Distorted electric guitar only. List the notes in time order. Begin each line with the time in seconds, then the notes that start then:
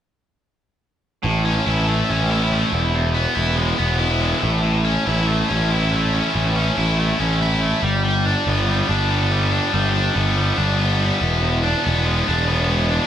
1.23 A2
1.45 C#4
1.66 E4
1.87 A3
2.10 C#4
2.30 E4
2.52 A3
2.72 E2
2.94 E2
3.14 B3
3.35 E4
3.57 G#3
3.78 B3
3.99 E4
4.20 G#3
4.41 A2
4.62 A2
4.85 C#4
5.06 E4
5.27 A3
5.48 C#4
5.70 E4
5.92 A3
6.13 C#4
6.34 A2
6.55 C#4
6.77 E4
6.99 A3
7.20 C#4
7.41 E4
7.61 A3
7.83 G3
8.04 G3
8.25 D4
8.47 B3
8.67 G3
8.88 D4
9.10 B3
9.31 G3
9.52 D4
9.73 G3
9.94 D4
10.15 B3
10.36 G3
10.57 D4
10.78 B3
10.99 G3
11.21 E2
11.42 E2
11.63 D4
11.84 B3
12.05 G#3
12.26 D4
12.47 B3
12.69 G#3
12.91 D4